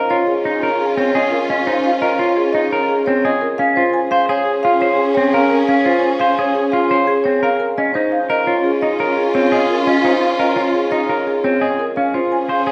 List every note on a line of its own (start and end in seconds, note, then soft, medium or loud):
0.00 3.38 C#4 medium
0.00 3.38 F4 medium
0.00 0.16 A#4 medium
0.00 0.15 D#5 loud
0.10 0.33 F4 medium
0.10 0.33 C#5 medium
0.27 0.50 G#4 medium
0.44 0.68 D#4 medium
0.44 0.68 D#5 medium
0.62 0.85 A#4 medium
0.62 0.85 C#5 medium
0.80 1.03 G#4 medium
0.97 1.20 C4 medium
0.97 1.20 C#5 loud
1.15 1.38 G#4 medium
1.15 1.38 D#5 medium
1.31 1.55 A#4 medium
1.49 1.73 C#4 medium
1.49 1.72 D#5 medium
1.66 1.90 D#4 medium
1.66 1.90 C5 medium
1.84 2.07 F5 medium
2.01 2.25 A#4 medium
2.01 2.24 D#5 medium
2.19 2.42 F4 medium
2.19 2.42 C#5 medium
2.37 2.60 G#4 medium
2.53 2.77 D#4 medium
2.53 2.77 D#5 loud
2.71 2.95 A#4 medium
2.71 2.94 C#5 medium
2.89 3.12 G#4 medium
3.06 3.30 C4 medium
3.06 3.29 C#5 loud
3.25 3.47 G#4 medium
3.25 3.47 D#5 medium
3.41 3.64 A#4 medium
3.58 7.56 C#4 medium
3.58 3.82 C#4 medium
3.58 7.56 G#4 medium
3.58 3.81 F5 loud
3.76 3.99 F4 medium
3.76 3.99 C5 medium
3.94 4.17 G#5 medium
4.11 4.29 C5 medium
4.11 4.34 F5 loud
4.29 4.52 G#4 medium
4.29 4.52 C#5 medium
4.45 4.69 G#4 medium
4.63 4.87 F4 medium
4.63 4.86 F5 loud
4.81 5.04 C5 medium
4.81 5.04 C#5 medium
4.97 5.21 G#4 medium
5.15 5.39 C4 medium
5.15 5.38 C#5 loud
5.33 5.56 A#4 medium
5.33 5.56 F5 medium
5.50 5.73 A#4 medium
5.68 5.91 C#4 medium
5.68 5.91 F5 medium
5.85 6.09 F4 medium
5.85 6.08 C5 medium
6.03 6.26 G#5 medium
6.20 6.38 C5 medium
6.20 6.43 F5 loud
6.38 6.61 G#4 medium
6.38 6.61 C#5 medium
6.55 6.78 G#4 medium
6.72 6.96 F4 medium
6.72 6.95 F5 loud
6.90 7.13 C5 medium
6.90 7.13 C#5 medium
7.07 7.30 G#4 loud
7.24 7.48 C4 medium
7.24 7.48 C#5 loud
7.43 7.66 A#4 medium
7.43 7.66 F5 medium
7.60 7.83 A#4 medium
7.78 11.75 C#4 medium
7.78 7.95 C#4 medium
7.78 11.75 F4 medium
7.78 8.00 D#5 medium
7.94 8.18 D#4 medium
7.94 8.18 C5 medium
8.12 8.35 F5 medium
8.29 8.53 A#4 medium
8.29 8.53 D#5 loud
8.46 8.70 F4 medium
8.46 8.70 C#5 medium
8.64 8.87 G#4 medium
8.82 9.05 D#4 medium
8.82 9.05 D#5 medium
8.99 9.23 A#4 medium
8.99 9.22 C#5 medium
9.17 9.40 G#4 medium
9.34 9.57 C4 medium
9.34 9.57 C#5 loud
9.52 9.75 G#4 medium
9.70 9.92 A#4 medium
9.87 10.10 C#4 medium
9.87 10.10 D#5 medium
10.04 10.27 D#4 medium
10.04 10.27 C5 medium
10.22 10.45 F5 medium
10.39 10.62 A#4 medium
10.39 10.62 D#5 medium
10.56 10.79 F4 medium
10.56 10.79 C#5 medium
10.74 10.97 G#4 medium
10.91 11.14 D#4 medium
10.91 11.14 D#5 medium
11.09 11.32 A#4 medium
11.09 11.32 C#5 medium
11.27 11.49 G#4 medium
11.44 11.67 C4 medium
11.44 11.67 C#5 medium
11.61 11.84 G#4 medium
11.61 11.84 D#5 medium
11.79 12.02 A#4 medium
11.96 12.72 C#4 medium
11.96 12.19 C#4 medium
11.96 12.72 G#4 medium
11.96 12.19 F5 medium
12.14 12.37 F4 medium
12.14 12.37 C5 medium
12.32 12.54 G#5 medium
12.49 12.66 C5 medium
12.49 12.72 F5 medium
12.66 12.72 G#4 medium
12.66 12.72 C#5 medium